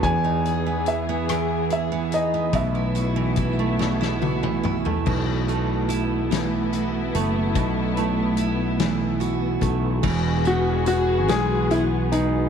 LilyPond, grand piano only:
\new Staff \with { instrumentName = "Grand piano" } { \time 6/8 \key b \mixolydian \tempo 4. = 48 gis''4 e''4 e''8 dis''8 | e''2 r4 | r2. | r2. |
\key e \major r8 fis'8 fis'8 gis'8 e'8 dis'8 | }